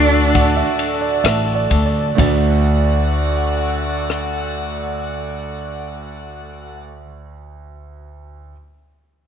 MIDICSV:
0, 0, Header, 1, 6, 480
1, 0, Start_track
1, 0, Key_signature, 2, "major"
1, 0, Tempo, 881057
1, 677, Tempo, 937500
1, 1157, Time_signature, 4, 2, 24, 8
1, 1157, Tempo, 956938
1, 4715, End_track
2, 0, Start_track
2, 0, Title_t, "String section"
2, 0, Program_c, 0, 48
2, 0, Note_on_c, 0, 66, 75
2, 0, Note_on_c, 0, 69, 69
2, 0, Note_on_c, 0, 74, 64
2, 0, Note_on_c, 0, 81, 83
2, 1134, Note_off_c, 0, 69, 0
2, 1137, Note_off_c, 0, 81, 0
2, 1143, Note_off_c, 0, 66, 0
2, 1143, Note_off_c, 0, 74, 0
2, 1155, Note_on_c, 0, 66, 65
2, 1156, Note_on_c, 0, 74, 65
2, 1157, Note_on_c, 0, 78, 77
2, 1159, Note_on_c, 0, 57, 66
2, 3455, Note_off_c, 0, 66, 0
2, 3456, Note_off_c, 0, 74, 0
2, 3456, Note_off_c, 0, 78, 0
2, 3457, Note_off_c, 0, 57, 0
2, 4715, End_track
3, 0, Start_track
3, 0, Title_t, "Grand piano"
3, 0, Program_c, 1, 0
3, 0, Control_c, 1, 64, 127
3, 0, Note_on_c, 1, 38, 58
3, 0, Note_on_c, 1, 50, 58
3, 0, Note_on_c, 1, 57, 85
3, 0, Note_on_c, 1, 62, 74
3, 0, Note_on_c, 1, 66, 68
3, 0, Note_on_c, 1, 74, 84
3, 0, Note_on_c, 1, 81, 66
3, 175, Note_off_c, 1, 81, 0
3, 187, Note_on_c, 1, 78, 67
3, 300, Note_off_c, 1, 78, 0
3, 307, Note_on_c, 1, 76, 65
3, 438, Note_off_c, 1, 57, 0
3, 439, Note_off_c, 1, 62, 0
3, 439, Note_off_c, 1, 66, 0
3, 440, Note_off_c, 1, 74, 0
3, 534, Note_off_c, 1, 76, 0
3, 550, Note_on_c, 1, 74, 60
3, 667, Note_off_c, 1, 74, 0
3, 675, Note_on_c, 1, 76, 65
3, 822, Note_off_c, 1, 76, 0
3, 833, Note_on_c, 1, 74, 62
3, 983, Note_off_c, 1, 74, 0
3, 992, Note_on_c, 1, 74, 61
3, 1134, Note_off_c, 1, 38, 0
3, 1134, Note_off_c, 1, 50, 0
3, 1143, Note_on_c, 1, 57, 74
3, 1145, Note_off_c, 1, 74, 0
3, 1150, Note_on_c, 1, 62, 64
3, 1156, Note_on_c, 1, 38, 72
3, 1159, Note_on_c, 1, 66, 65
3, 1163, Control_c, 1, 64, 0
3, 1165, Note_on_c, 1, 74, 78
3, 1255, Control_c, 1, 64, 127
3, 3578, Note_off_c, 1, 57, 0
3, 3585, Note_off_c, 1, 62, 0
3, 3590, Note_off_c, 1, 38, 0
3, 3594, Note_off_c, 1, 66, 0
3, 3599, Note_off_c, 1, 74, 0
3, 4336, Control_c, 1, 64, 0
3, 4715, End_track
4, 0, Start_track
4, 0, Title_t, "Cello"
4, 0, Program_c, 2, 42
4, 0, Note_on_c, 2, 62, 103
4, 661, Note_off_c, 2, 62, 0
4, 4715, End_track
5, 0, Start_track
5, 0, Title_t, "Upright bass"
5, 0, Program_c, 3, 32
5, 0, Note_on_c, 3, 38, 86
5, 329, Note_off_c, 3, 38, 0
5, 675, Note_on_c, 3, 33, 73
5, 887, Note_off_c, 3, 33, 0
5, 913, Note_on_c, 3, 38, 82
5, 1130, Note_off_c, 3, 38, 0
5, 1159, Note_on_c, 3, 38, 78
5, 3593, Note_off_c, 3, 38, 0
5, 4715, End_track
6, 0, Start_track
6, 0, Title_t, "Drums"
6, 190, Note_on_c, 9, 51, 64
6, 191, Note_on_c, 9, 36, 65
6, 244, Note_off_c, 9, 51, 0
6, 246, Note_off_c, 9, 36, 0
6, 430, Note_on_c, 9, 51, 49
6, 485, Note_off_c, 9, 51, 0
6, 679, Note_on_c, 9, 51, 62
6, 686, Note_on_c, 9, 37, 83
6, 730, Note_off_c, 9, 51, 0
6, 737, Note_off_c, 9, 37, 0
6, 915, Note_on_c, 9, 51, 52
6, 967, Note_off_c, 9, 51, 0
6, 1159, Note_on_c, 9, 36, 56
6, 1162, Note_on_c, 9, 51, 69
6, 1209, Note_off_c, 9, 36, 0
6, 1212, Note_off_c, 9, 51, 0
6, 2120, Note_on_c, 9, 37, 43
6, 2170, Note_off_c, 9, 37, 0
6, 4715, End_track
0, 0, End_of_file